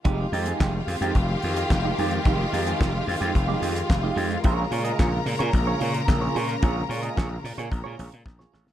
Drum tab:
HH |x-oxx-oxx-oxx-ox|x-oxx-oxx-oxx-ox|x-oxx-oxx-oxx-ox|x-oxx-oxx-ox----|
CP |----x-------x---|----x-------x---|----x-------x---|----x-----------|
SD |----o-------o---|----o-------o---|----o-------o---|----o-------oooo|
BD |o---o---o---o---|o---o---o---o---|o---o---o---o---|o---o---o---o---|